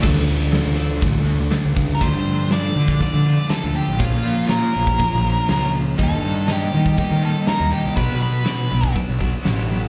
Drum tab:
CC |x---------------|----------------|----------------|----------------|
HH |--x-x-x-x-x-x-x-|o---o---o---o---|o---o---o---o---|o---o---o---o---|
SD |----o-------o---|----o-------o---|----o-------o---|----o-------o---|
BD |o-------o-----o-|o------oo-------|o------oo-------|o------oo-------|

CC |----------------|
HH |o---o---o---o---|
SD |----o-------o---|
BD |o------oo-o-----|